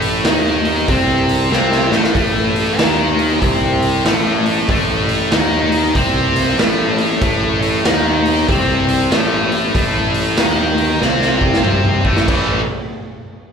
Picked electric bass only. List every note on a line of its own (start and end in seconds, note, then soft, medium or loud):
0.00 0.21 A1 medium
0.24 0.84 D#2 medium
0.88 1.48 C2 medium
1.51 1.89 C2 medium
1.90 2.13 A1 medium
2.15 2.75 A1 medium
2.78 3.38 D#2 medium
3.42 4.01 C2 medium
4.05 4.64 A1 medium
4.68 5.28 A1 medium
5.31 5.91 D#2 medium
5.95 6.54 C2 loud
6.58 7.17 A1 medium
7.21 7.81 A1 medium
7.84 8.44 D#2 medium
8.48 9.07 C2 medium
9.10 9.70 A1 medium
9.75 10.34 A1 medium
10.38 10.97 D#2 medium
11.01 11.61 C2 loud
11.63 12.01 C2 medium
12.04 12.26 A1 medium
12.28 12.65 A1 medium